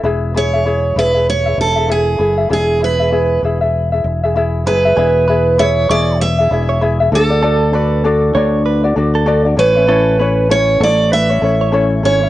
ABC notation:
X:1
M:4/4
L:1/16
Q:"Swing 16ths" 1/4=98
K:Emix
V:1 name="Steel-string acoustic guitar"
z2 c4 B2 c2 A2 G4 | G2 B4 z8 B2- | B4 c2 d2 e6 A2- | A6 z8 B2- |
B4 c2 d2 e6 c2 |]
V:2 name="Clean electric guitar"
z16 | z16 | G2 B2 z2 c'2 B z2 c z4 | A2 B2 z2 c2 B z2 A2 z3 |
A2 B2 z2 c'2 B z2 c z4 |]
V:3 name="Ukulele"
[EGBe]2 [EGBe] [EGe] [EGBe]2 [EGBe] [EGe]2 [EGe]2 [EGe] [EGBe]2 [EGBe] [EGe] | [EGBe]2 [EGBe] [EGe] [EGBe]2 [EGBe] [EGe]2 [EGe]2 [EGe] [EGBe]2 [EGBe] [EGe] | [EGBe]2 [EGBe]2 [EGBe]2 [EGBe]3 [EGe] [EGBe]2 [EGBe] [EGe] [DFAd] [DFd] | [DFAd]2 [DFAd]2 [DFAd]2 [DFAd]3 [DFd] [DFAd]2 [DFAd] [DFd] [CEAc] [CEc] |
[CEAc]2 [CEAc]2 [CEAc]2 [EA]3 [CEc] [CEAc]2 [CEAc]2 [CEAc] [CEc] |]
V:4 name="Fingered electric bass" clef=bass
E,,,6 E,,,4 E,,,4 F,,,2 | E,,,6 E,,,4 E,,,4 F,,,2 | E,,,6 E,,,4 E,,,4 D,,2- | D,,6 D,,4 D,,4 A,,,2- |
A,,,6 A,,,4 A,,,4 G,,,2 |]